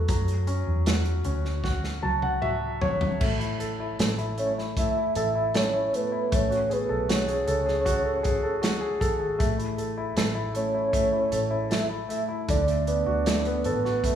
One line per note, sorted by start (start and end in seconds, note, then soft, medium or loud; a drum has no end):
0.00 0.09 F#3 medium
0.00 0.11 C#4 medium
0.00 0.11 F#4 medium
0.00 0.48 A4 medium
0.08 0.63 F#2 loud
0.08 2.01 F#3 medium
0.08 kick loud
0.08 closed hi-hat medium
0.28 closed hi-hat soft
0.47 1.23 C#4 soft
0.47 closed hi-hat medium
0.67 1.21 E2 medium
0.86 1.62 F#4 medium
0.86 snare loud
0.86 closed hi-hat medium
1.05 closed hi-hat soft
1.24 1.99 D2 medium
1.24 2.78 C#4 soft
1.24 closed hi-hat medium
1.45 snare soft
1.64 2.40 F#4 medium
1.64 kick medium
1.64 snare soft
1.84 snare soft
2.03 2.78 C#2 medium
2.03 3.17 F#3 medium
2.03 2.21 A5 medium
2.22 2.41 F#5 medium
2.22 high tom medium
2.42 3.18 F#4 medium
2.42 2.79 E5 medium
2.42 mid tom medium
2.82 3.18 G#1 medium
2.82 3.18 C#5 medium
2.82 floor tom medium
3.01 floor tom medium
3.20 3.95 A1 medium
3.20 4.36 A3 medium
3.20 kick loud
3.20 crash medium
3.40 3.78 E4 soft
3.40 closed hi-hat medium
3.59 3.98 A4 soft
3.59 closed hi-hat medium
3.80 4.17 E4 medium
3.99 5.12 A1 medium
3.99 5.14 A4 soft
3.99 snare loud
3.99 closed hi-hat medium
4.18 4.57 E4 medium
4.18 closed hi-hat soft
4.38 4.75 A3 medium
4.38 4.53 C#5 medium
4.38 closed hi-hat medium
4.58 4.95 E4 soft
4.58 snare soft
4.77 5.91 A3 medium
4.77 5.14 E5 loud
4.77 kick medium
4.77 closed hi-hat medium
4.97 5.34 E4 soft
5.15 5.90 A1 medium
5.15 5.53 A4 medium
5.15 5.57 E5 loud
5.15 closed hi-hat medium
5.35 5.72 E4 medium
5.54 6.30 A4 medium
5.54 5.97 C#5 medium
5.54 snare loud
5.54 closed hi-hat medium
5.73 6.10 E4 soft
5.93 6.30 A3 medium
5.93 6.35 B4 medium
5.93 closed hi-hat medium
6.12 6.31 E4 medium
6.32 6.86 A1 medium
6.32 9.36 A3 medium
6.32 6.74 C#5 loud
6.32 kick loud
6.32 closed hi-hat medium
6.50 7.07 F#4 soft
6.50 closed hi-hat soft
6.70 7.27 G#4 medium
6.70 7.10 B4 medium
6.70 closed hi-hat medium
6.89 7.44 B1 medium
6.89 7.46 A4 medium
7.09 7.84 F#4 medium
7.09 8.98 C#5 medium
7.09 snare loud
7.09 closed hi-hat medium
7.28 7.64 G#4 medium
7.28 closed hi-hat soft
7.47 8.98 C#2 loud
7.47 8.03 A4 medium
7.47 closed hi-hat medium
7.66 8.22 G#4 medium
7.66 snare soft
7.85 8.60 F#4 medium
7.85 kick medium
7.85 closed hi-hat medium
8.05 8.42 A4 medium
8.23 8.79 G#4 medium
8.23 kick medium
8.23 closed hi-hat medium
8.43 8.99 A4 medium
8.62 9.37 F#4 medium
8.62 snare loud
8.62 closed hi-hat medium
8.81 9.18 G#4 medium
9.01 9.37 G#1 medium
9.01 9.38 A4 medium
9.01 kick medium
9.01 closed hi-hat medium
9.19 9.39 G#4 medium
9.39 10.13 A1 loud
9.39 10.53 A3 medium
9.39 kick loud
9.39 closed hi-hat medium
9.58 9.96 E4 soft
9.58 closed hi-hat medium
9.78 10.15 A4 soft
9.78 closed hi-hat medium
9.98 10.33 E4 medium
10.16 11.28 A1 loud
10.16 11.30 A4 medium
10.16 snare loud
10.16 closed hi-hat loud
10.35 10.73 E4 medium
10.54 10.91 A3 medium
10.54 11.67 C#5 loud
10.54 closed hi-hat medium
10.74 11.11 E4 medium
10.93 12.07 A3 medium
10.93 kick medium
10.93 closed hi-hat medium
11.13 11.49 E4 medium
11.32 12.06 A1 medium
11.32 11.68 A4 medium
11.32 closed hi-hat medium
11.51 11.88 E4 medium
11.70 12.46 A4 medium
11.70 11.86 E5 loud
11.70 snare medium
11.70 closed hi-hat medium
11.90 12.27 E4 medium
12.09 12.47 A3 medium
12.09 12.24 E5 loud
12.09 closed hi-hat medium
12.28 12.48 E4 medium
12.49 13.03 D2 loud
12.49 14.15 D3 medium
12.49 12.85 D5 loud
12.49 kick loud
12.49 closed hi-hat medium
12.68 13.25 A3 soft
12.68 closed hi-hat medium
12.87 13.44 B3 soft
12.87 13.67 D5 loud
12.87 closed hi-hat medium
13.06 13.67 D2 medium
13.06 13.83 F#4 medium
13.26 14.03 A3 medium
13.26 snare loud
13.26 closed hi-hat loud
13.45 14.15 B3 medium
13.45 closed hi-hat soft
13.64 14.15 A1 medium
13.64 14.15 A4 medium
13.64 14.15 B4 medium
13.64 closed hi-hat medium
13.85 14.15 F#4 medium
13.85 snare soft
14.04 14.15 A3 medium
14.04 kick medium
14.04 closed hi-hat medium